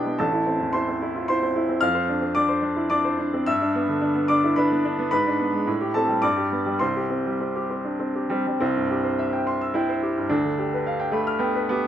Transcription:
Already playing: B1 B2 B3 D4 E4 G4 B4 D5 G5 B5 D6
0.06 B3
0.18 A1 A4 A5
0.32 E4
0.46 C4
0.60 E2
0.73 E4 C5 C6
0.88 C4
1.02 E4
1.16 F4
1.28 E4 C5 C6
1.43 C4
1.56 E4
1.69 C4
1.81 F2 F5 F6
1.95 C5
2.09 D4
2.22 C4
2.35 D4 D5 D6
2.48 C5
2.62 D4
2.76 E4
2.90 D4 D5 D6
3.05 C5
3.19 D4
3.34 C4
3.46 G2 E5 E6
3.62 D4
3.75 B3
3.89 D3
4.01 D4
4.15 B3
4.28 D4 D5 D6
4.44 E4
4.56 D4 B4 B5
4.71 B3
4.85 D4
4.99 B3
5.11 G#2 B4 B5
5.27 D4
5.39 B3
5.53 G#3
5.67 A2
5.81 G4
5.94 C4 A4 A5
6.08 G3
6.22 G2 D5 D6
6.37 G4
6.52 B3
6.66 G3
6.79 C2 C5 C6
6.96 G4
7.10 C4
7.26 G3
7.40 C4
7.56 G4
7.70 C4
7.84 D4
7.99 C4
8.15 G4
8.30 G3 C4
8.47 G3
8.60 C2 C4
8.76 G2
8.91 G4
9.04 C5
9.19 E5
9.33 G5
9.47 C6
9.61 E6
9.74 E4 G5
9.89 C5
10.03 G4
10.18 G2
10.29 D2 D4
10.45 D3
10.59 G4
10.74 B4
10.87 F5
11.00 G5
11.12 A3 B5
11.27 F6
11.39 B3 G5
11.55 B4
11.69 B3 G4

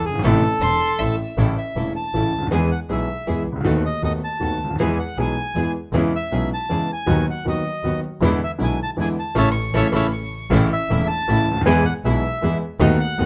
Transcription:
0.04 G1 G#4
0.09 F#1
0.15 G1 G#1
0.22 A1 A2 C3 E3 A3 C4 E4 A4
0.60 E1 E2 C4 E4 A4 C6
0.99 A1 A2 C4 E4 A4 E5
1.37 A1 A2 C#3 E3 A3 C#4 E4 A4
1.58 E5
1.76 E1 E2 C#3 E3 A3 C#4 E4 A4
1.96 A5
2.14 A1 A2 C#3 E3 A3 C#4 E4 A4
2.33 D2
2.38 C#2
2.42 D2
2.47 D#2
2.51 E2 E3 G#3 B3 E4 G#4 G#5
2.72 F#5
2.89 B1 B2 E3 G#3 B3 E4 G#4 E5
3.27 E2 E3 G#3 B3 E4 G#4
3.45 C#2
3.52 C2 C#2
3.61 D2 D#2 D#3 A3
3.65 D#2 B3 D#4 F#4 A4
3.86 D#5
4.02 D#2 D#3 A3 B3 D#4 F#4 A4 D#5
4.24 A5
4.40 D#2 D#3 A3 B3 D#4 F#4 A4
4.60 D2
4.64 C#2
4.70 D2
4.76 D#2 E2 B3 E4 G#4
4.80 E2 E3 G#3 B3 G#4 G#5
5.00 F#5
5.17 B1 B2 E3 G#3 B3 E4 G#4 G#5
5.55 E2 E3 G#3 B3 E4 G#4
5.92 E2 C#3 E3 G#3 B3 C#4 E4 G#4
6.16 E5
6.31 B1 B2 C#3 G#3 B3 C#4 E4 G#4
6.54 A5
6.69 E2 C#3 E3 G#3 B3 C#4 E4 G#4
6.93 G#5
7.06 D#2 D#3 F#3 B3 D#4 F#4
7.30 F#5
7.45 D#2 D#3 F#3 B3 D#4 F#4 D#5
7.83 D#2 D#3 F#3 B3 D#4 F#4
8.21 E2 D3 E3 G#3 B3 D4 E4
8.44 E5
8.58 B1 B2 D3 G#3 B3 D4 E4
8.64 G#5
8.83 A5
8.97 E2 D3 E3 G#3 B3 D4 E4 G#5
9.19 A5
9.35 A1 C#3 E3 A3 C#4 E4 C#5 E5 A5
9.52 C#6
9.73 A1 C#3 E3 A3 C#4 E4 C#5 E5 A5
9.92 A1 C#3 E3 A3 C#4 E4 C#5 E5 A5 B5
10.13 C#6
10.50 A1 A2 C#3 E3 A3 C#4 E4
10.73 E5
10.90 E1 E2 C#3 E3 A3 C#4 E4
11.08 A5
11.28 A1 A2 C#3 E3 A3 C#4 E4
11.47 C#2 D2
11.57 D2
11.61 D#2
11.66 E2 E3 G#3 B3 E4 G#4 G#5
11.85 F#5
12.04 B1 B2 E3 G#3 B3 E4 G#4 E5
12.42 E2 E3 G#3 B3 E4 G#4
12.80 D#2 D#3 A3 B3 D#4 F#4
13.00 F#5
13.18 D#2 D#3 A3 B3 D#4 F#4

